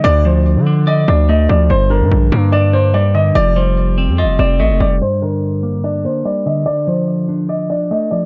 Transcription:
<<
  \new Staff \with { instrumentName = "Grand piano" } { \time 4/4 \key g \minor \tempo 4 = 145 d''8 c''4. ees''8 d''8 ees''8 d''8 | c''8 bes'4. d''8 c''8 d''8 ees''8 | d''8 c''4. ees''8 d''8 ees''8 d''8 | c''8 bes'4. d''8 c''8 d''8 ees''8 |
d''8 c''4. ees''8 d''8 ees''8 d''8 | }
  \new Staff \with { instrumentName = "Clean electric guitar" } { \time 4/4 \key g \minor d8 f4 d'8 d''8 d'8 a8 f8 | g,8 d4 bes8 d'8 bes8 g8 d8 | f8 g4 c'8 f'8 c'8 a8 g8 | g,8 d4 bes8 d'8 bes8 g8 d8 |
d8 f4 d'8 d''8 d'8 a8 f8 | }
  \new Staff \with { instrumentName = "808-style bass" } { \clef bass \time 4/4 \key g \minor d,4~ d,16 d4~ d16 d,4 d,8 | g,,8. g,16 bes,,8 g,2~ g,8 | f,,4.~ f,,16 f,16. f,,16. f,,8 a,,16 f,,16 f,,8 | r1 |
r1 | }
>>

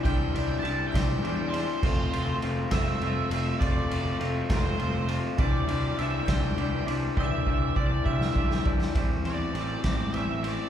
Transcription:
<<
  \new Staff \with { instrumentName = "Synth bell" } { \time 6/8 \key c \major \tempo 4. = 67 g'''4 a'''8 g'''4 c'''8~ | c'''4 r8 e'''4. | d'''4 r8 c'''4 r8 | d'''4 e'''8 g'''4 r8 |
e'''4 d'''8 e'''4 r8 | r2. | }
  \new Staff \with { instrumentName = "Lead electric guitar" } { \time 6/8 \key c \major g''4 a''8 g''4 c''8~ | c''4 r8 e''4. | d''4 r8 c''4 r8 | d''4 e''8 g''4 r8 |
e''4 d''8 e''4 r8 | r8 d''4. e''8 d''8 | }
  \new Staff \with { instrumentName = "Clean electric guitar" } { \time 6/8 \key c \major <g d' e'>8 <g d' e'>8 <g d' e'>8 <g d' e'>8 <g d' e'>8 <g d' e'>8 | <a c' f'>8 <a c' f'>8 <a c' f'>8 <a c' f'>8 <a c' f'>8 <a c' f'>8 | <a c' f'>8 <a c' f'>8 <a c' f'>8 <a c' f'>8 <a c' f'>8 <a c' f'>8 | <g d' e'>8 <g d' e'>8 <g d' e'>8 <g d' e'>8 <g d' e'>8 <g d' e'>8 |
<g d' e'>8 <g d' e'>8 <g d' e'>8 <g d' e'>8 <g d' e'>8 <g d' e'>8 | <g c' e'>8 <c' e'>8 <g c' e'>8 <c' e'>8 <g c' e'>8 <c' e'>8 | }
  \new Staff \with { instrumentName = "Clean electric guitar" } { \time 6/8 \key c \major <e c' d' g'>8 <e c' d' g'>8 <e c' d' g'>8 <e c' d' g'>8 <e c' d' g'>8 <e c' d' g'>8 | <a c' f'>8 <a c' f'>8 <a c' f'>8 <a c' f'>8 <a c' f'>8 <a c' f'>8 | <a c' f'>8 <a c' f'>8 <a c' f'>8 <a c' f'>8 <a c' f'>8 <a c' f'>8 | <e c' d' g'>8 <e c' d' g'>8 <e c' d' g'>8 <e c' d' g'>8 <e c' d' g'>8 <e c' d' g'>8 |
<e c' d' g'>8 <e c' d' g'>8 <e c' d' g'>8 <e c' d' g'>8 <e c' d' g'>8 <e c' d' g'>8 | <e a c' g'>8 <a c' g'>8 <e a c' g'>8 <a c' g'>8 <e a c' g'>8 <a c' g'>8 | }
  \new Staff \with { instrumentName = "Picked electric bass" } { \clef bass \time 6/8 \key c \major c,8 c,8 c,8 c,8 e,4 | f,,8 f,,8 f,,8 f,,8 f,,8 f,,8 | f,,8 f,,8 f,,8 f,,8 f,,4 | c,8 c,8 c,8 c,8 c,8 c,8 |
c,8 c,8 c,8 c,8 b,,4 | a,,8 e,8 a,,8 a,,8 a,,4 | }
  \new DrumStaff \with { instrumentName = "Drums" } \drummode { \time 6/8 <bd cymr>8 cymr8 cymr8 <bd cymr sn>8 cymr8 cymr8 | <cymc bd>8 cymr8 cymr8 <bd cymr sn>8 cymr8 cymr8 | <bd cymr>8 cymr8 cymr8 <bd cymr sn>8 cymr8 cymr8 | <bd cymr>8 cymr8 cymr8 <bd cymr sn>8 cymr8 cymr8 |
bd8 bd8 bd8 bd16 sn16 bd16 sn16 bd16 sn16 | <bd cymr>8 cymr8 cymr8 <bd cymr sn>8 cymr8 cymr8 | }
>>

